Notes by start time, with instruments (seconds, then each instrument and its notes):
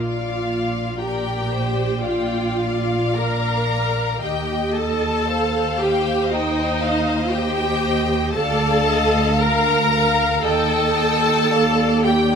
Already playing: double bass section A#1, cello section A#2, viola section F4, violin section D5 F5
0.99 viola section G4, violin section A#4 D5 G5
1.51 violin section C5
2.04 viola section F4, violin section D5 F5 G5
2.60 violin section F5
3.15 viola section A#4, violin section A#5
4.21 cello section D#2, double bass section D#2, viola section G4, violin section D#5 G5
4.75 viola section A4, violin section A5
5.29 violin section C5 F5
5.78 viola section G4, violin section G5
6.30 viola section D#4, violin section D#5 G5
6.86 violin section F5
7.32 viola section G4, violin section G5
7.38 violin section D#5
8.33 cello section D2, viola section A4, violin section A5
8.37 double bass section D2, violin section D5 F5
8.89 violin section D#5
9.38 viola section A#4, violin section F5 A#5
9.91 violin section F5
10.42 cello section D#2, double bass section D#2, viola section A4, violin section D#5 G5 A5
10.95 violin section G5
11.50 violin section D5 F5
12.04 viola section G4, violin section G5